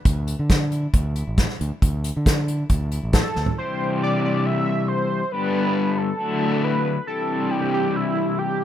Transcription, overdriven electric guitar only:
0.00 0.50 D4 medium
0.05 1.16 D3 medium
0.27 1.37 A3 medium
0.50 0.93 D4 medium
0.73 1.15 E4 medium
0.94 2.04 D4 medium
1.16 2.26 E4 medium
1.38 2.02 A3 medium
1.59 1.81 D3 medium
1.82 2.92 D3 medium
2.04 3.12 A3 medium
2.26 2.69 D4 medium
2.47 2.90 E4 medium
2.71 3.58 D4 medium
2.91 3.57 E4 medium
3.14 3.58 A3 medium
3.35 3.57 D3 medium
3.57 5.32 C3 medium
3.57 5.32 E3 medium
3.57 5.31 G3 medium
3.57 5.33 E4 medium
3.57 5.33 G4 medium
5.32 6.19 G2 medium
5.32 6.16 D3 medium
5.32 6.18 G3 medium
5.32 6.19 B3 medium
5.32 6.20 D4 medium
5.32 6.20 G4 medium
6.17 7.06 D3 medium
6.17 7.06 F#3 medium
6.17 7.07 A3 medium
6.17 7.08 D4 medium
6.17 7.07 F#4 medium
7.06 8.64 C3 medium
7.06 8.64 E3 medium
7.06 8.64 G3 medium
7.06 8.64 E4 medium
7.06 8.64 G4 medium

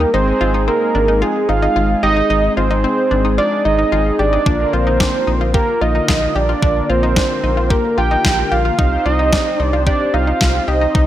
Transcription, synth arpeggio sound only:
0.00 0.08 D#4 medium
0.14 0.30 D#4 medium
0.41 0.49 F4 medium
0.54 0.62 D#4 medium
0.68 0.84 C4 medium
0.95 1.03 D4 medium
1.08 1.16 D#4 medium
1.22 1.38 F4 medium
1.49 1.57 D#4 medium
1.62 1.70 D#4 medium
1.76 1.92 F4 medium
2.03 2.11 G4 medium
2.17 2.25 D#4 medium
2.30 2.46 D#4 medium
2.57 2.65 F4 medium
2.71 2.79 D#4 medium
2.84 3.00 C4 medium
3.11 3.19 D4 medium
3.25 3.33 D#4 medium
3.38 3.54 F4 medium
3.65 3.73 D#4 medium
3.79 3.87 D#4 medium
3.92 4.08 F4 medium
4.19 4.27 G4 medium
4.33 4.41 D#4 medium
4.46 4.62 D4 medium
4.73 4.81 F4 medium
4.87 4.95 D#4 medium
5.00 5.16 D4 medium
5.27 5.35 D#4 medium
5.41 5.49 F4 medium
5.54 5.71 G4 medium
5.81 5.89 F4 medium
5.95 6.03 D#4 medium
6.08 6.25 F4 medium
6.36 6.44 G4 medium
6.49 6.57 F4 medium
6.62 6.79 D4 medium
6.90 6.98 F4 medium
7.03 7.11 D#4 medium
7.17 7.33 D4 medium
7.44 7.52 D#4 medium
7.57 7.65 F4 medium
7.71 7.87 G4 medium
7.98 8.06 F4 medium
8.11 8.19 D#4 medium
8.25 8.41 F4 medium
8.52 8.60 G4 medium
8.65 8.73 F4 medium
8.79 8.95 D#4 medium
9.06 9.14 F4 medium
9.19 9.27 D#4 medium
9.33 9.49 D4 medium
9.60 9.68 D#4 medium
9.73 9.81 F4 medium
9.87 10.03 G4 medium
10.14 10.22 D#4 medium
10.27 10.35 D#4 medium
10.41 10.57 F4 medium
10.68 10.76 G4 medium
10.81 10.89 D#4 medium
10.95 11.07 D#4 medium

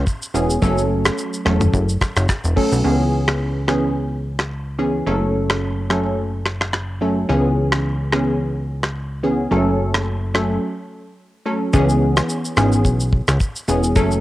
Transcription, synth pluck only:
0.34 0.51 E3 medium
0.34 0.51 B3 medium
0.34 0.51 C#4 medium
0.34 0.51 G#4 medium
0.62 1.40 F#3 loud
0.62 1.40 A3 medium
0.62 1.40 C#4 medium
0.62 1.40 A4 loud
1.45 1.71 F#3 medium
1.45 1.71 A3 medium
1.45 1.72 C#4 medium
1.45 1.72 A4 medium
2.56 2.73 F#3 medium
2.56 2.73 A3 medium
2.56 2.73 C#4 medium
2.56 2.73 A4 medium
2.84 3.62 E3 medium
2.84 3.62 B3 medium
2.84 3.62 C#4 medium
2.84 3.62 G#4 loud
3.67 3.94 E3 medium
3.67 3.94 B3 medium
3.67 3.94 C#4 medium
3.67 3.94 G#4 medium
4.78 4.95 E3 medium
4.78 4.95 B3 medium
4.78 4.95 C#4 medium
4.78 4.95 G#4 medium
5.06 5.84 F#3 medium
5.06 5.84 A3 medium
5.06 5.84 C#4 medium
5.06 5.84 A4 loud
5.90 6.16 F#3 medium
5.90 6.16 A3 medium
5.90 6.16 C#4 medium
5.90 6.16 A4 medium
7.01 7.18 F#3 medium
7.01 7.18 A3 medium
7.01 7.18 C#4 medium
7.01 7.18 A4 medium
7.29 8.06 E3 medium
7.29 8.06 B3 medium
7.29 8.07 C#4 medium
7.29 8.07 G#4 loud
8.12 8.38 E3 medium
8.12 8.38 B3 medium
8.12 8.38 C#4 medium
8.12 8.38 G#4 medium
9.23 9.40 E3 medium
9.23 9.40 B3 medium
9.23 9.40 C#4 medium
9.23 9.40 G#4 medium
9.51 10.28 F#3 medium
9.51 10.29 A3 medium
9.51 10.29 C#4 medium
9.51 10.29 A4 loud
10.34 10.60 F#3 medium
10.34 10.60 A3 medium
10.34 10.60 C#4 medium
10.34 10.61 A4 medium
11.46 11.62 F#3 medium
11.46 11.62 A3 medium
11.46 11.62 C#4 medium
11.46 11.62 A4 medium
11.73 12.51 E3 loud
11.73 12.51 B3 medium
11.73 12.51 C#4 medium
11.73 12.51 G#4 loud
12.57 12.83 E3 medium
12.57 12.83 B3 medium
12.57 12.83 C#4 medium
12.57 12.83 G#4 medium
13.68 13.84 E3 medium
13.68 13.84 B3 medium
13.68 13.85 C#4 medium
13.68 13.85 G#4 medium
13.96 14.20 F#3 medium
13.96 14.20 A3 medium
13.96 14.20 C#4 medium
13.96 14.20 A4 loud

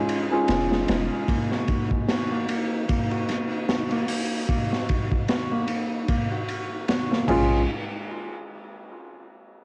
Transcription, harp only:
0.00 0.70 G#3 medium
0.00 0.48 F4 medium
0.48 1.57 F4 medium
0.71 0.87 G#3 loud
0.88 1.33 G#3 medium
1.28 2.31 A#3 medium
1.51 2.08 F#4 medium
2.09 3.11 F#4 medium
2.31 2.48 A#3 loud
2.49 2.88 A#3 medium
2.88 3.91 A#3 medium
3.11 3.68 F#4 medium
3.68 4.71 F#4 medium
3.91 4.08 A#3 loud
4.09 4.48 A#3 medium
4.49 4.62 A#3 medium
4.72 5.27 F#4 medium
5.29 5.49 F#4 medium
5.51 5.67 A#3 loud
5.69 6.07 A#3 medium
6.09 6.22 A#3 medium
6.31 6.87 F#4 medium
6.88 7.09 F#4 medium
7.11 7.27 A#3 medium
7.28 7.66 G#3 medium

